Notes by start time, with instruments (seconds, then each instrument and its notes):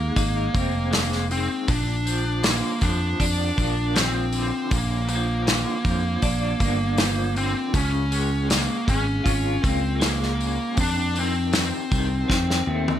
Already playing: clean electric guitar G#2 D#3 G#3, lead electric guitar A#3
0.16 picked electric bass G#1, clean electric guitar D#4, kick, open hi-hat
0.53 picked electric bass F1, clean electric guitar C4, kick, open hi-hat
0.91 clean electric guitar G#3, snare, open hi-hat
1.12 snare
1.30 clean electric guitar D#3, lead electric guitar C4, open hi-hat
1.68 picked electric bass A#1, clean electric guitar A#2, lead electric guitar D4, kick, open hi-hat
2.06 clean electric guitar F3, open hi-hat
2.43 clean electric guitar D3, lead electric guitar A#3, snare, open hi-hat
2.81 picked electric bass F2, clean electric guitar F3, lead electric guitar D4, kick, open hi-hat
3.20 picked electric bass F2, clean electric guitar D4, kick, open hi-hat
3.56 picked electric bass A#1, clean electric guitar A#3, kick, open hi-hat
3.94 clean electric guitar F3, lead electric guitar C4, snare, open hi-hat
4.33 clean electric guitar D3, open hi-hat
4.71 picked electric bass A#1, clean electric guitar A#2, lead electric guitar A#3, kick, open hi-hat
5.09 clean electric guitar F3, lead electric guitar A#3, open hi-hat
5.47 clean electric guitar D3, snare, open hi-hat
5.85 picked electric bass F2, clean electric guitar F3, kick, open hi-hat
6.22 picked electric bass A#1, clean electric guitar D4, kick, open hi-hat
6.60 picked electric bass G1, clean electric guitar A#3, kick, open hi-hat
6.97 clean electric guitar F3, snare, open hi-hat
7.36 clean electric guitar D3, lead electric guitar C4, open hi-hat
7.74 picked electric bass C#2, clean electric guitar C#3, lead electric guitar C#4, kick, open hi-hat
8.12 clean electric guitar G#3, open hi-hat
8.49 clean electric guitar C#3, lead electric guitar A#3, snare, open hi-hat
8.86 picked electric bass G#1, clean electric guitar G#3, lead electric guitar C#4, kick, open hi-hat
9.24 picked electric bass G#1, clean electric guitar F4, kick, open hi-hat
9.61 picked electric bass C#2, clean electric guitar A#3, kick, open hi-hat
9.67 lead electric guitar C4
10.00 clean electric guitar G#3, lead electric guitar A#3, snare, open hi-hat
10.23 snare
10.37 clean electric guitar C#3, open hi-hat
10.75 clean electric guitar F2, picked electric bass F2, kick, open hi-hat
10.81 lead electric guitar D4
11.14 clean electric guitar D#3, open hi-hat
11.20 lead electric guitar C4
11.52 clean electric guitar C3, snare, open hi-hat
11.91 picked electric bass C2, clean electric guitar D#3, kick, open hi-hat
12.28 picked electric bass F2, clean electric guitar C4, kick, snare
12.50 snare
12.67 picked electric bass D#2, clean electric guitar A3
12.88 high tom